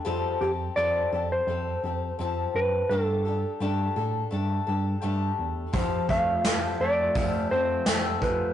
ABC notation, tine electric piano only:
X:1
M:4/4
L:1/8
Q:1/4=84
K:Flyd
V:1 name="Tine electric piano" clef=bass
F,, F,, F,, F,, F,, F,, F,, ^F,, | G,,2 G,, A,, G,, G,, G,, E,, | F,, F,, F,, F,, F,, F,, F,, F,, |]